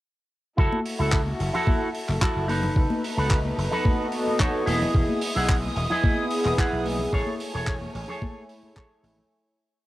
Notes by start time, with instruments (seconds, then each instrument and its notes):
0.57 slap bass F#1, clean electric guitar E4 F#4 A4, violin section E4 F#4 A4, kick
0.72 high conga
0.86 open hi-hat
0.99 slap bass C#2, clean electric guitar E4 F#4 A4
1.12 kick, clap
1.26 high conga
1.39 slap bass F#1, muted clean electric guitar stroke, open hi-hat
1.54 clean electric guitar E4 F#4 A4, low conga
1.67 kick, high conga
1.95 open hi-hat
2.09 slap bass F#1, clap, high conga
2.21 clean electric guitar E4 F#4 A4, kick, clap, low conga
2.36 slap bass F#1
2.48 violin section A3 D#4 B4, clean electric guitar D#4 A4 B4, open hi-hat, high conga
2.63 low conga
2.76 slap bass F#1, analog synth pad B3 F#4 A4 D#5, kick
2.90 high conga
3.04 open hi-hat
3.17 slap bass C#2, analog synth pad B3 F#4 A4 D#5, clean electric guitar D#4 A4 B4
3.31 kick, clap
3.45 high conga
3.57 slap bass F#1, muted clean electric guitar stroke, open hi-hat
3.71 analog synth pad B3 F#4 A4 D#5, clean electric guitar D#4 A4 B4, low conga
3.85 kick, high conga
4.12 analog synth pad B3 F#4 A4 D#5, open hi-hat
4.28 high conga
4.39 clean electric guitar D#4 A4 C#5, kick, clap, low conga
4.54 analog synth pad B3 E4 G#4 D#5
4.66 slap bass E1, violin section G#3 E4 D#6, clean electric guitar E4 G#4 D#5, open hi-hat, high conga
4.82 low conga
4.94 slap bass E1, analog synth pad B3 E4 G#4 D#5, kick
5.09 high conga
5.21 open hi-hat
5.35 slap bass B1, analog synth pad B3 E4 G#4 D#5, clean electric guitar E4 G#4 F#5
5.49 kick, clap
5.63 high conga
5.76 slap bass E1, muted clean electric guitar stroke, open hi-hat
5.90 analog synth pad B3 E4 G#4 D#6, clean electric guitar E4 G#4 D#5, low conga
6.04 kick, high conga
6.30 analog synth pad B3 E4 G#4 D#6, open hi-hat
6.45 slap bass E1, clap, high conga
6.57 clean electric guitar E4 G#4 F#5, kick, clap, low conga
6.72 slap bass B1, analog synth pad B3 E4 G#4 D#5
6.86 open hi-hat, high conga
6.99 low conga
7.12 slap bass A1, analog synth pad A3 E4 G#4 C#5, violin section A3 C#5 G#5, clean electric guitar G#4 A4 C#5, kick
7.27 high conga
7.40 open hi-hat
7.54 slap bass E1, analog synth pad A3 E4 G#4 C#5, clean electric guitar G#4 A4 C#5
7.67 kick, clap
7.82 high conga
7.94 slap bass A1, muted clean electric guitar stroke, open hi-hat
8.08 analog synth pad A3 E4 C#5 G#5, clean electric guitar G#4 A4 C#5, low conga
8.22 kick, high conga
8.49 analog synth pad A3 E4 G#4 C#5, open hi-hat
8.63 analog synth pad A3 E4 G#4 C#5, high conga
8.76 clean electric guitar G#4 A4 C#5, kick, clap, low conga
8.90 analog synth pad A3 E4 C#5 G#5
9.03 slap bass A1, open hi-hat, high conga
9.18 low conga